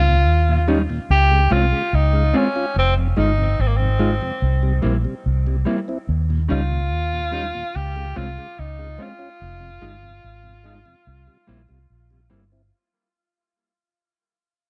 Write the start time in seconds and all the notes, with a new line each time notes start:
Already playing: C#2 F4
0.07 D#2 A#2
0.27 D#2
0.48 D#2 A#2
0.68 G3 C#4 D#4
0.89 D#2 A#2, muted clean electric guitar stroke
1.10 C#2 G4
1.31 C#3 G#3
1.50 C2 G#3 C4 C#4 F4
1.72 C#3 G#3
1.93 C#2 D#4
2.13 C#3 G#3
2.33 G#3 C4 C#4 F4
2.56 C#4 F4
2.76 F1 C4
2.98 F2 C3
3.16 G1 G#3 D#4 F4
3.38 F2 C3
3.59 G#1 C4
3.67 A#3
3.77 F2 C3 C4
3.99 G#3 D#4 F4
4.22 F2 C3, muted clean electric guitar stroke
4.42 C2
4.63 C3 G3
4.82 A#1 G3 A#3 C4 E4
5.05 C3 G3
5.26 C2
5.46 C3 G3
5.65 G3 A#3 C4 E4
5.88 C4 E4
6.09 D#2
6.30 D#2 A#2
6.48 C#2 G3 C#4 D#4 F4
6.71 D#2 A#2
6.92 D#2
7.13 D#2 A#2
7.31 G3 C#4 D#4
7.55 D#2 A#2, muted clean electric guitar stroke
7.76 C#2 G4
7.96 C#3 G#3
8.16 C2 G#3 C4 C#4 F4
8.38 C#3 G#3
8.59 C#2 D#4
8.79 C#3 G#3
8.98 G#3 C4 C#4 F4
9.19 C#4 F4
9.42 F1
9.60 F2 C3
9.81 G1 G#3 D#4 F4
10.02 F2 C3
10.24 G#1
10.43 F2 C3
10.64 G#3 D#4 F4
10.86 F2 C3, muted clean electric guitar stroke
11.07 C2
11.27 C3 G3
11.47 A#1 G3 A#3 C4 E4
11.69 C2 C3 G3
11.90 A#1
12.11 C3 G3
12.30 G1 G3 A#3 C4 E4
12.52 C4 E4